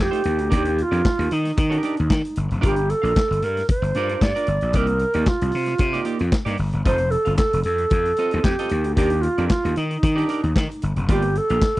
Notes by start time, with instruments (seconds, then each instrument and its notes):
0.00 alto flute G4, clap
0.11 clean electric guitar A3 D#4 F4 C5, closed hi-hat
0.23 slap bass D#2, muted clean electric guitar stroke, closed hi-hat
0.37 slap bass D2, muted clean electric guitar stroke, closed hi-hat
0.50 slap bass D#2, clean electric guitar D4 G4 A#4 D5, kick, closed hi-hat
0.55 alto flute G4
0.65 muted clean electric guitar stroke, closed hi-hat
0.76 muted clean electric guitar stroke, closed hi-hat
0.82 alto flute F4
0.91 slap bass F2, clean electric guitar D4 G4 A#4 D5, closed hi-hat
1.03 muted clean electric guitar stroke, kick, snare, clap
1.18 slap bass D#2, muted clean electric guitar stroke, closed hi-hat
1.31 slap bass D#3, alto flute D#4, closed hi-hat
1.43 muted clean electric guitar stroke, snare, closed hi-hat
1.57 slap bass D#3, muted clean electric guitar stroke, kick, closed hi-hat
1.70 clean electric guitar D4 G4 A#4 D5, closed hi-hat
1.83 clean electric guitar D4 G4 A#4 D5, closed hi-hat
1.96 slap bass D#2, muted clean electric guitar stroke, closed hi-hat
2.09 slap bass D#3, muted clean electric guitar stroke, kick, snare, clap
2.21 muted clean electric guitar stroke, closed hi-hat
2.36 slap bass G1, closed hi-hat
2.49 slap bass F1, muted clean electric guitar stroke, closed hi-hat
2.61 slap bass G1, clean electric guitar D4 F4 A#4 D5, alto flute G4, kick, closed hi-hat
2.76 muted clean electric guitar stroke, closed hi-hat
2.89 alto flute A4, muted clean electric guitar stroke, closed hi-hat
3.02 slap bass A#1, clean electric guitar D4 F4 A#4 F5, closed hi-hat
3.15 muted clean electric guitar stroke, kick, snare, clap
3.28 slap bass G1, muted clean electric guitar stroke, closed hi-hat
3.42 slap bass G2, alto flute A#4, closed hi-hat
3.56 muted clean electric guitar stroke, snare, closed hi-hat
3.69 alto flute C5, muted clean electric guitar stroke, kick, closed hi-hat
3.82 slap bass G1, muted clean electric guitar stroke, closed hi-hat
3.94 slap bass G2, clean electric guitar D4 F4 A#4 D5, closed hi-hat
4.09 clean electric guitar D4 F4 A#4 D5, closed hi-hat
4.21 slap bass G2, alto flute D5, kick, snare, clap
4.35 clean electric guitar D4 F4 A#4 D5, closed hi-hat
4.47 slap bass G1, muted clean electric guitar stroke, closed hi-hat
4.61 slap bass A#1, muted clean electric guitar stroke, closed hi-hat
4.73 slap bass C2, clean electric guitar A#3 D#4 G4 D5, alto flute A#4, kick, closed hi-hat
4.87 muted clean electric guitar stroke, closed hi-hat
4.99 muted clean electric guitar stroke, closed hi-hat
5.14 slap bass D#2, clean electric guitar A#3 D#4 G4 D5, closed hi-hat
5.26 alto flute F4, kick, snare, clap
5.41 slap bass C2, muted clean electric guitar stroke, closed hi-hat
5.52 slap bass C3, open hi-hat
5.66 muted clean electric guitar stroke, snare, closed hi-hat
5.78 slap bass C3, muted clean electric guitar stroke, kick, closed hi-hat
5.93 clean electric guitar A#3 D#4 G4 D5, closed hi-hat
6.05 clean electric guitar A#3 D#4 G4 D5, closed hi-hat
6.19 slap bass F2, muted clean electric guitar stroke, closed hi-hat
6.31 muted clean electric guitar stroke, kick, snare, clap
6.45 slap bass G2, clean electric guitar A#3 D#4 G4 D5, closed hi-hat
6.57 slap bass G1, muted clean electric guitar stroke, open hi-hat
6.73 slap bass G1, muted clean electric guitar stroke, closed hi-hat
6.85 slap bass F1, clean electric guitar C4 F4 A4 D#5, alto flute C5, kick, closed hi-hat
6.98 muted clean electric guitar stroke, closed hi-hat
7.11 alto flute A4, muted clean electric guitar stroke, closed hi-hat
7.25 slap bass G1, clean electric guitar C4 F4 A4 F5, closed hi-hat
7.37 alto flute A4, muted clean electric guitar stroke, kick, snare, clap
7.51 slap bass F1, muted clean electric guitar stroke, closed hi-hat
7.63 slap bass F2, alto flute A4, closed hi-hat
7.78 muted clean electric guitar stroke, closed hi-hat
7.90 slap bass F2, muted clean electric guitar stroke, kick, closed hi-hat
8.05 muted clean electric guitar stroke, closed hi-hat
8.17 clean electric guitar C4 F4 A4 D#5, closed hi-hat
8.31 slap bass D#2, clean electric guitar C4 F4 A4 D#5, closed hi-hat
8.44 slap bass F2, alto flute G4, kick, snare, clap
8.59 clean electric guitar C4 F4 A4 D#5, closed hi-hat
8.69 slap bass D#2, muted clean electric guitar stroke, closed hi-hat
8.84 slap bass D2, muted clean electric guitar stroke, closed hi-hat
8.95 slap bass D#2, clean electric guitar D4 G4 A#4 D5, alto flute G4, kick, closed hi-hat
9.10 muted clean electric guitar stroke, closed hi-hat
9.22 alto flute F4, muted clean electric guitar stroke, closed hi-hat
9.38 slap bass F2, clean electric guitar D4 G4 A#4 D5, closed hi-hat
9.49 alto flute F4, kick, snare, clap
9.64 slap bass D#2, muted clean electric guitar stroke, closed hi-hat
9.76 slap bass D#3, alto flute D#4, closed hi-hat
9.90 muted clean electric guitar stroke, closed hi-hat
10.03 slap bass D#3, muted clean electric guitar stroke, kick, closed hi-hat
10.16 clean electric guitar D4 G4 A#4 D5, closed hi-hat
10.29 clean electric guitar D4 G4 A#4 D5, closed hi-hat
10.42 slap bass D#2, muted clean electric guitar stroke, closed hi-hat
10.55 slap bass D#3, muted clean electric guitar stroke, kick, snare, clap
10.69 muted clean electric guitar stroke, closed hi-hat
10.82 slap bass G1, closed hi-hat
10.96 slap bass F1, muted clean electric guitar stroke, closed hi-hat
11.09 slap bass G1, clean electric guitar A#3 F4 G4 D5, alto flute G4, kick, closed hi-hat
11.22 muted clean electric guitar stroke, closed hi-hat
11.35 alto flute A4, muted clean electric guitar stroke, closed hi-hat
11.49 slap bass A#1, clean electric guitar A#3 F4 G4 F5, closed hi-hat
11.62 muted clean electric guitar stroke, kick, snare, clap
11.75 muted clean electric guitar stroke